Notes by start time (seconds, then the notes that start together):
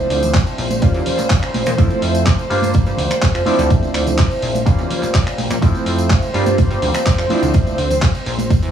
Already playing: F3 C4 D4 E4 C5
0.10 D2, open hi-hat
0.23 closed hi-hat, tambourine, low conga
0.34 kick, clap, closed hi-hat, ride, tambourine, high conga
0.47 closed hi-hat, tambourine
0.58 A#1, open hi-hat
0.70 closed hi-hat, tambourine, high conga
0.82 G3 A#3 C#4 F4, kick, closed hi-hat, ride, tambourine
0.94 E2, closed hi-hat, tambourine
1.06 open hi-hat, low conga
1.18 A#1, clap, closed hi-hat, tambourine, high conga
1.30 A#1, kick, clap, closed hi-hat, ride, tambourine
1.43 finger snap, closed hi-hat, tambourine
1.54 A#1, open hi-hat, high conga
1.66 A#2, finger snap, closed hi-hat, tambourine, low conga
1.78 F2 F3 A3 C4 E4, kick, closed hi-hat, ride, tambourine
1.90 closed hi-hat, tambourine, high conga
2.02 F2, open hi-hat
2.15 closed hi-hat, tambourine
2.26 kick, clap, closed hi-hat, ride, tambourine, high conga
2.39 closed hi-hat, tambourine
2.50 G2 G3 A#3 D4 F4, open hi-hat
2.62 closed hi-hat, tambourine, high conga
2.74 kick, closed hi-hat, ride, tambourine
2.86 G2, closed hi-hat, tambourine
2.97 D2, open hi-hat, low conga
3.10 finger snap, tambourine, high conga
3.22 kick, clap, closed hi-hat, ride, tambourine
3.35 F2, finger snap, closed hi-hat, tambourine
3.46 F3 C4 D4 E4, open hi-hat, high conga
3.59 D2, closed hi-hat, tambourine, low conga
3.70 kick, closed hi-hat, ride, tambourine
3.83 closed hi-hat, tambourine, high conga
3.94 D2, finger snap, open hi-hat
4.07 closed hi-hat, tambourine, low conga
4.18 kick, clap, closed hi-hat, ride, tambourine, high conga
4.31 closed hi-hat, tambourine
4.42 A#1, open hi-hat
4.55 closed hi-hat, tambourine, high conga
4.66 G3 A#3 C#4 F4, kick, closed hi-hat, ride, tambourine
4.78 E2, closed hi-hat, tambourine
4.91 open hi-hat, low conga
5.02 A#1, clap, closed hi-hat, tambourine, high conga
5.14 A#1, kick, clap, closed hi-hat, ride, tambourine
5.27 finger snap, closed hi-hat, tambourine
5.38 A#1, open hi-hat, high conga
5.50 A#2, finger snap, closed hi-hat, tambourine, low conga
5.62 F2 F3 A3 C4 E4 C5, kick, closed hi-hat, ride, tambourine
5.75 closed hi-hat, tambourine, high conga
5.86 F2, open hi-hat
5.98 closed hi-hat, tambourine
6.10 kick, clap, closed hi-hat, ride, tambourine, high conga
6.22 closed hi-hat, tambourine
6.34 G2 G3 A#3 D4 F4, open hi-hat
6.46 closed hi-hat, tambourine, high conga
6.58 kick, closed hi-hat, ride, tambourine
6.71 G2, closed hi-hat, tambourine
6.82 D2, open hi-hat, low conga
6.94 finger snap, closed hi-hat, tambourine, high conga
7.06 kick, clap, closed hi-hat, ride, tambourine
7.18 F2, finger snap, closed hi-hat, tambourine
7.30 F3 C4 D4 E4, open hi-hat, high conga
7.42 D2, closed hi-hat, tambourine, low conga
7.54 kick, closed hi-hat, ride, tambourine
7.67 closed hi-hat, tambourine, high conga
7.78 D2, open hi-hat
7.91 closed hi-hat, tambourine, low conga
8.02 kick, clap, closed hi-hat, ride, tambourine, high conga
8.15 closed hi-hat, tambourine
8.26 A#1, open hi-hat
8.38 closed hi-hat, tambourine, high conga
8.50 kick, closed hi-hat, ride, tambourine
8.63 E2, closed hi-hat, tambourine